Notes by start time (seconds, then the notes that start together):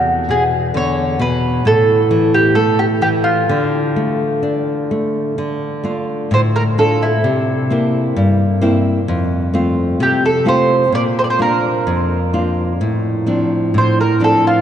Already playing: E2 F#4
0.29 B2 G#4
0.74 D3 C#5
1.19 B2 B4
1.65 A2 A4
2.11 E3
2.34 G4
2.55 A3 A4
2.79 G4
3.02 E3 G4
3.24 F4
3.49 D3
3.96 A3
4.43 D4
4.91 A3
5.38 D3
5.84 A3 D4 F4
6.31 A2 C5
6.56 A#4
6.78 A3 D4 F4 A4
7.03 E4
7.24 C3
7.70 A#3 C4 E4
8.16 G2
8.61 A#3 C4 E4
9.08 F2
9.54 A3 C4 F4
10.00 C3 G4
10.26 A4
10.45 A3 C4 F4 C5
10.92 A#2 D5
11.19 C5
11.24 D5
11.30 C5
11.39 A#3 D4 F4 A#4
11.87 F2
12.33 A#3 D4 F4
12.81 A2
13.27 F3 C4 D4
13.74 A2 C5
14.01 A#4
14.20 F3 C4 D4
14.24 A4
14.47 F4